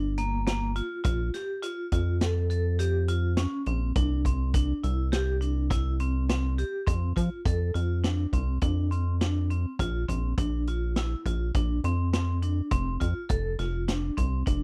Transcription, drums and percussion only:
0.18 closed hi-hat
0.47 snare, closed hi-hat
0.76 closed hi-hat
1.04 kick, closed hi-hat
1.34 snare, closed hi-hat
1.63 closed hi-hat
1.92 kick, closed hi-hat
2.21 snare, closed hi-hat
2.50 closed hi-hat
2.79 closed hi-hat
3.08 closed hi-hat
3.37 snare, closed hi-hat
3.66 closed hi-hat
3.96 kick, closed hi-hat
4.25 kick, closed hi-hat
4.54 kick, closed hi-hat
4.84 closed hi-hat
5.13 snare, closed hi-hat
5.42 closed hi-hat
5.71 kick, snare, closed hi-hat
6.00 closed hi-hat
6.29 snare, closed hi-hat
6.59 closed hi-hat
6.87 kick, closed hi-hat
7.17 kick, closed hi-hat
7.46 kick, closed hi-hat
7.75 closed hi-hat
8.04 snare, closed hi-hat
8.33 kick, closed hi-hat
8.61 kick, closed hi-hat
8.92 closed hi-hat
9.21 snare, closed hi-hat
9.50 closed hi-hat
9.79 kick, closed hi-hat
10.09 kick, closed hi-hat
10.38 kick, closed hi-hat
10.67 closed hi-hat
10.96 snare, closed hi-hat
11.26 kick, closed hi-hat
11.54 kick, closed hi-hat
11.84 closed hi-hat
12.13 snare, closed hi-hat
12.42 closed hi-hat
12.71 kick, closed hi-hat
13.01 kick, closed hi-hat
13.29 kick, closed hi-hat
13.59 snare, closed hi-hat
13.88 snare, closed hi-hat
14.18 kick, closed hi-hat
14.47 kick, closed hi-hat

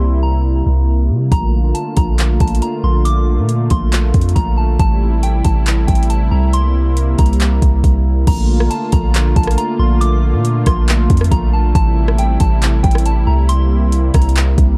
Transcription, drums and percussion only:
1.32 kick, closed hi-hat
1.75 closed hi-hat
1.97 kick, closed hi-hat
2.18 clap, closed hi-hat
2.40 kick, closed hi-hat
2.48 closed hi-hat
2.55 closed hi-hat
2.62 closed hi-hat
3.05 closed hi-hat
3.49 closed hi-hat
3.70 kick, closed hi-hat
3.92 clap, closed hi-hat
4.14 kick, closed hi-hat
4.21 closed hi-hat
4.29 closed hi-hat
4.36 kick, closed hi-hat
4.79 kick, closed hi-hat
5.23 closed hi-hat
5.45 kick, closed hi-hat
5.66 clap, closed hi-hat
5.88 kick, closed hi-hat
5.95 closed hi-hat
6.03 closed hi-hat
6.10 closed hi-hat
6.53 closed hi-hat
6.97 closed hi-hat
7.18 kick, closed hi-hat, open hi-hat
7.26 closed hi-hat
7.33 closed hi-hat
7.40 clap, closed hi-hat
7.62 kick, closed hi-hat
7.84 kick, closed hi-hat
8.27 kick, closed hi-hat, crash
8.60 cross-stick
8.71 closed hi-hat
8.92 kick, closed hi-hat
9.14 clap, closed hi-hat
9.36 kick, closed hi-hat
9.43 cross-stick, closed hi-hat
9.51 closed hi-hat
9.58 closed hi-hat
10.01 closed hi-hat
10.45 closed hi-hat
10.66 kick, cross-stick, closed hi-hat
10.88 clap, closed hi-hat
11.10 kick, closed hi-hat
11.17 cross-stick, closed hi-hat
11.24 closed hi-hat
11.32 kick, closed hi-hat
11.75 kick, closed hi-hat
12.08 cross-stick
12.18 closed hi-hat
12.40 kick, closed hi-hat
12.62 clap, closed hi-hat
12.84 kick, closed hi-hat
12.91 cross-stick, closed hi-hat
12.98 closed hi-hat
13.06 closed hi-hat
13.49 closed hi-hat
13.92 closed hi-hat
14.14 kick, cross-stick, closed hi-hat, open hi-hat
14.22 closed hi-hat
14.29 closed hi-hat
14.36 clap, closed hi-hat
14.58 kick, closed hi-hat

